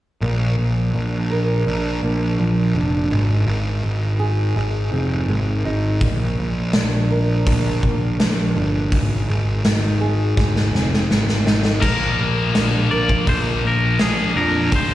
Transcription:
0.21 A#1 A#2
0.58 A#1
0.94 A#1 D4
1.31 A#4
1.66 A#1 D4
2.03 A#1 A#3
2.39 A#1 F3
2.75 F1 D4
3.10 G#1 G#2
3.47 G#1
3.83 G#1 D#4
4.20 G#4
4.56 G#1 D#4
4.92 F1 C4
5.29 G#1 G#3
5.65 G#1 D#4
6.01 A#1 A#2, kick, open hi-hat
6.39 A#1
6.73 A#1 D4, snare, open hi-hat
7.11 A#4
7.46 A#1 D4, kick, open hi-hat
7.83 A#1 A#3, kick
8.20 A#1 F3, snare, open hi-hat
8.56 G1 D4
8.92 G#1 G#2, kick, open hi-hat
9.29 G#1
9.64 G#1 D#4, snare, open hi-hat
10.01 G#4
10.37 G#1 D#4, kick, snare
10.56 snare
10.73 F1 C4, snare
10.94 snare
11.10 G#1 G#3, snare
11.29 snare
11.47 G#1 D#4, snare
11.65 snare
11.80 A#1 A#2 F3 A#3 A#4, kick, crash
12.19 A#1 A#3
12.54 A#1 D4, snare, open hi-hat
12.91 A#1 A#4 D5
13.09 kick
13.27 A#1 D4 C5, kick, open hi-hat
13.64 A#1 A#3 A#4
13.99 A#1 G#4 A#4, snare, open hi-hat
14.36 F2 D4 A#4
14.71 G#1 G#2 D#3 G#3, kick, open hi-hat
14.75 C5

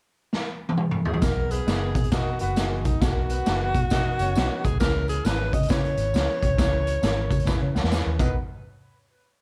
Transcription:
0.33 snare
0.69 high tom
0.77 mid tom
0.91 mid tom
1.05 G#4, floor tom
1.14 floor tom
1.22 B1 B3 D#4 F#4 A#4, kick, snare, closed hi-hat, tambourine
1.51 B3 G#4 B4, closed hi-hat, tambourine
1.67 F#1 B3 D#4 F#4 A#4, snare, closed hi-hat, tambourine
1.95 B2, kick, closed hi-hat, tambourine
2.04 closed hi-hat
2.11 B2 B3 D#4 F#4 A#4 D#5, kick, snare, closed hi-hat, tambourine
2.39 F#1 B3 F#4 B4, closed hi-hat, tambourine
2.56 G#3 B3 D#4 F#4 G#4 A#4, snare, closed hi-hat, tambourine
2.85 B1 D#4, kick, closed hi-hat, tambourine
3.01 B1 B3 D#4 F#4 A4, kick, snare, closed hi-hat, tambourine
3.08 A#4
3.30 B3 B4, closed hi-hat, tambourine
3.46 F#1 B3 D#4 F#4 G#4, snare, closed hi-hat, tambourine
3.74 B2, kick, closed hi-hat, tambourine
3.90 B2 B3 C#4 D#4 F#4 A#4 D#5, kick, snare, closed hi-hat, tambourine
3.97 D#4
4.19 F#1 C#4 C#5, closed hi-hat, tambourine
4.35 B1 B3 D#4 F#4 B4, snare, closed hi-hat, tambourine
4.64 A#1 G#4, kick, closed hi-hat, tambourine
4.72 B1
4.80 C#2 C#4 E4 G#4 A#4 B4, kick, snare, closed hi-hat, tambourine
5.08 G#4, closed hi-hat, tambourine
5.25 G#1 C#4 E4 G#4 B4, snare, closed hi-hat, tambourine
5.53 C#3 D#5, kick, closed hi-hat, tambourine
5.63 closed hi-hat
5.68 C#3 C#4 E4 G#4 B4 C#5, kick, snare, closed hi-hat, tambourine
5.85 closed hi-hat
5.97 G#1, closed hi-hat, tambourine
6.14 C#2 C#4 E4 G#4 A#4, snare, closed hi-hat, tambourine
6.21 B4
6.43 A#1, kick, closed hi-hat, tambourine
6.50 B1
6.57 C#2 C#4 E4 G#4 B4, kick, snare, closed hi-hat, tambourine
6.87 closed hi-hat, tambourine
7.02 G#1 C#4 E4 G#4 A#4, snare, closed hi-hat, tambourine
7.31 C#3, kick, closed hi-hat, tambourine
7.40 closed hi-hat
7.46 C#4 E4 G#4 B4, kick, snare, tambourine
7.62 C#3
7.75 C#2 F#5, snare, tambourine
7.84 E2, snare
7.90 C#4 D#4 G#4 B4 G#5, snare, tambourine
7.96 E4
8.06 D#2
8.19 B1 B3 D#4 F#4 A#4 B4 D#5, kick, crash, tambourine

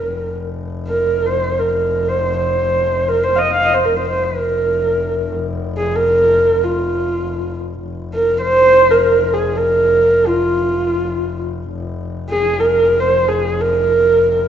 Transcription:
Already playing: A#4
0.05 F1
0.89 A#4
1.26 C5
1.59 A#4
2.09 C5
2.37 C5
3.09 A#4
3.24 C5
3.35 D#5 F5
3.52 F5
3.63 D#5
3.74 C5
3.85 A#4
3.92 F1
3.96 C5
4.08 C5
4.23 A#4
5.78 G#4
5.96 A#4
6.64 F4
7.82 F1
8.14 A#4
8.41 C5
8.91 A#4
9.34 G#4
9.56 A#4
10.27 F4
11.71 F1
12.30 G#4
12.60 A#4
13.00 C5
13.29 G#4
13.61 A#4

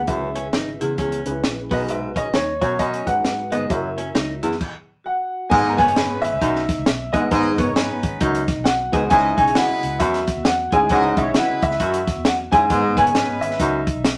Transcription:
0.07 C#2 F#2 C#3 C#4 E4 G#4 B4 E5, kick, closed hi-hat
0.35 C#4, closed hi-hat
0.53 G#1 D#4, snare, closed hi-hat
0.81 E2 C#3 E4, closed hi-hat
0.98 C#2 E2 C#4, kick, closed hi-hat
1.12 closed hi-hat
1.26 C#2 C#4 D#4 G#4 B4, closed hi-hat
1.31 E4
1.44 A#1, snare, closed hi-hat
1.71 B1 F#2 B2 B3 D#4 F#4 G#4 B4 D#5, kick, open hi-hat
1.89 G#2 E5, closed hi-hat
2.16 C#4 D#5, kick, closed hi-hat
2.34 D#2 D#4 C#5, snare, closed hi-hat
2.61 F#2 B2 F#4 C#5, kick, closed hi-hat
2.79 F#2 C#4 D#5, kick, closed hi-hat
2.94 closed hi-hat
3.06 G#2 D#4 F#4 G#4 B4 F#5, kick, closed hi-hat
3.25 G#2, snare, closed hi-hat
3.52 G1 G#2 B3 D#5, closed hi-hat
3.69 F#1 F#2 E4 F#4 G#4 C#5 E5, kick, closed hi-hat
3.75 A#4
3.98 C#4, closed hi-hat
4.15 C#2 D#4, snare, closed hi-hat
4.43 E2 F#2 E4, closed hi-hat
4.52 snare
4.61 kick, crash
5.04 F#4 F#5
5.49 G#1 G#2 G#3 B3 D#4 G#4 B4 D#5 G#5, kick, crash
5.69 A#4 A#5
5.77 F#1 B3 C#4 G#4 A#4 C#5 G#5, kick, closed hi-hat
5.88 closed hi-hat
5.96 G#3 B3 C#4 B4, snare, closed hi-hat
6.21 G#1 E4 E5, closed hi-hat
6.33 C#2
6.42 B1 F#2 D#4, kick, closed hi-hat
6.56 snare
6.69 kick, snare, closed hi-hat
6.78 C#2
6.86 B1, snare, closed hi-hat
7.12 A1 G#2 B3 D#4 G#4 B4 D#5 F#5, kick, closed hi-hat
7.31 G#1 G#2 G#3 B3 D#4 G#4 B4 D#5, kick, closed hi-hat
7.57 F#1 B3 C#4 A#4 C#5, kick, closed hi-hat
7.76 G#3 B3 C#4 D#4 B4, snare, closed hi-hat
7.90 muted fingered electric bass stroke
8.03 G#1, kick, closed hi-hat
8.21 C#2 F#2 D#4, kick, closed hi-hat
8.35 closed hi-hat
8.48 kick, snare, closed hi-hat
8.57 B1
8.64 F#4 F#5, snare, closed hi-hat
8.93 C#2 G#2 B3 D#4 G#4 B4 D#5, kick, closed hi-hat
9.10 C#2 G#2 C#3 C#4 D#4 E4 G#4 B4 C#5 D#5 E5 G#5, kick, closed hi-hat
9.36 B1 G#3 C#4 D#4 E4 G#4 C#5 G#5, kick, closed hi-hat
9.48 closed hi-hat
9.54 G#3 B3 E4 F#4 B4 F#5, snare, closed hi-hat
9.70 muted fingered electric bass stroke
9.83 C#2, closed hi-hat
9.99 E2 F#2 E4 F#4 E5, kick, closed hi-hat
10.14 snare, closed hi-hat
10.27 kick, snare, closed hi-hat
10.37 D#2
10.43 E2 F#4 F#5, snare, closed hi-hat
10.71 D2 G#2 C#4 E4 G#4 C#5 D#5 G#5, kick, closed hi-hat
10.89 C#2 G#2 C#3 C#4 D#4 F#4 G#4 B4 C#5 D#5 F#5, kick, closed hi-hat
10.97 E4
11.16 B1 G#3 C#4 D#4 E4 C#5 E5, kick, closed hi-hat
11.34 G#3 B3 E4 F#4 B4 F#5, snare, closed hi-hat
11.50 muted fingered electric bass stroke
11.60 C#2 E4 E5, kick, closed hi-hat
11.71 snare
11.80 F#2 F#4, kick, closed hi-hat
11.94 closed hi-hat
12.07 kick, snare, closed hi-hat
12.17 E2
12.25 F#4 F#5, snare, closed hi-hat
12.51 F#2 G#2 C#4 E4 G#4 C#5 E5 G#5, kick, closed hi-hat
12.70 G#1 G#2 G#3 B3 D#4 G#4 B4 D#5, kick, closed hi-hat
12.96 F#1 B3 C#4 G#4 A#4 C#5 G#5, kick, closed hi-hat
13.07 closed hi-hat
13.15 G#3 B3 C#4 B4, snare, closed hi-hat
13.29 muted fingered electric bass stroke
13.40 G#1 E4 E5, closed hi-hat
13.51 snare
13.60 C#2 F#2 D#4, kick, closed hi-hat
13.87 kick, closed hi-hat
13.95 B1
14.04 snare, closed hi-hat

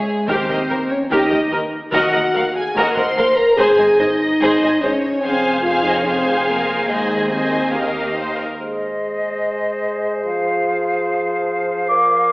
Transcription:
Already playing: G#3 G#4
0.27 D#2 D#3 C4 G4 A#4 C5
0.49 D#2 G4 A#4 D#5
0.69 D#2 G4 A#4
0.89 C#4 C#5
1.10 D#2 D#4 G4 A#4 D#5
1.30 D#2 G4 A#4 D#5
1.51 D#2 G4 A#4
1.91 D#2 D#3 F#4 A#4 D#5 F#5
2.13 D#2 A#4 D#5 F#5
2.34 D#2 A#4 F5
2.57 G#4 G#5
2.75 D#2 F#4 A#4 D#5 A#5
2.96 D#2 A#4 C5 D#5 F#5 C6
3.17 D#2 A#4 F5
3.36 A#4 A#5
3.57 G#1 G#2 G#4 C5 G#5
3.78 G#1 G#2 G#4 C5 D#5 G#5
3.99 G#1 G#2 D#4 G#4 C5 D#5
4.40 G#1 G#2 G#4 C5
4.61 G#1 G#2 G#4 C5 D#5 G#5
4.81 G#1 G#2 C#4 G#4 C5 C#5 D#5
5.21 F1 F2 C4 G#4 C5 F5 G#5
5.26 C5
5.62 F4 G#4 C5 F5 G#5
5.67 F5
5.83 D#4
5.87 D#5
5.95 C#4 C#5
6.05 C4 G#4 C5 F5 G#5
6.49 A#3 A#4
6.89 D#2 G#3 G#4 C5 D#5 G#5
7.30 C4 G#4 C5 D#5 G#5
7.73 G4 A#4 D#5 F5
7.77 A#3
8.16 C5
8.36 A#4
8.58 G#3 G#4 C5 D#5
10.25 F3 F5
11.88 A#4 D5

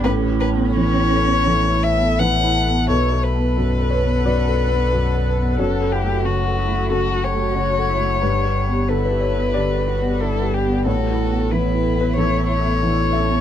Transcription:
Already playing: B4
0.04 A1 A2 C#4 E4 A4 B4
0.22 C#5
0.28 E4
0.40 B4 A5
0.53 B3
0.58 A4
0.76 E3 C#5
0.94 C#5
1.00 E4
1.12 A4
1.23 B3
1.29 C#5
1.47 E3 A4
1.64 C#5
1.72 E4
1.83 C#5 E5
1.96 B3
2.02 A4
2.19 E3 B4 E5 F#5
2.38 C#5
2.43 E4
2.55 A4
2.66 B3
2.72 A5
2.88 B1 A4 B4 C#5 F#5
3.07 D5
3.12 A4
3.23 B4 A5
3.34 B3
3.40 B4
3.57 F#2
3.74 D5
3.80 A4
3.90 B4 C#5
4.02 B3
4.08 D5
4.24 F#2 F#4 B4 D5
4.42 D5
4.47 A4
4.58 D4 D5
4.69 B3
4.76 B4
4.91 F#2 B3 F#5
5.09 D5
5.15 A4
5.25 B4
5.37 B3
5.42 A5
5.58 F#1 F#2 C#4 F#4 A4 C#5
5.75 A4
5.81 A4
5.91 E4 G4 F#5
6.03 A3
6.08 F#4
6.24 C#3 F#4
6.41 A4
6.46 A4
6.57 E4 F#4
6.68 A3
6.74 A4
6.90 C#3 F#4 A4
7.06 A4
7.12 A4
7.22 G4 A4 C#5
7.33 A3
7.39 F#4
7.54 C#3 F#4 C#5
7.72 A4
7.77 A4
7.88 E4 F#4
7.99 A3
8.04 F#5
8.21 G1 G2 G3 B3 D4 G4 B4
8.38 B4
8.44 G4
8.55 G5
8.66 B3
8.71 G4
8.89 D3 E4 A4 B4
9.04 B4
9.11 G4
9.20 G4 C#5
9.34 B3
9.38 B4
9.54 D3 D4 G4 D5
9.70 B4
9.77 G4
9.87 F#4 B4
9.99 B3
10.04 G4
10.20 D3 E4 A4 D5
10.37 B4
10.42 G4
10.52 D4 G4
10.64 B3
10.69 G5
10.86 A1 A2 E4 F#4 A4 C#5
11.01 C#5
11.09 E4
11.18 A5
11.30 B3
11.34 A4
11.51 E3 E4 B4
11.67 C#5
11.74 E4
11.83 A4
11.96 B3
12.00 B4 C#5
12.16 E3 A4 C#5
12.33 C#5
12.40 E4
12.48 C#5
12.62 B3 A4
12.81 E3 D4 E5
12.98 C#5
13.03 E4
13.13 C#4 A4 E5
13.25 B3
13.30 A5

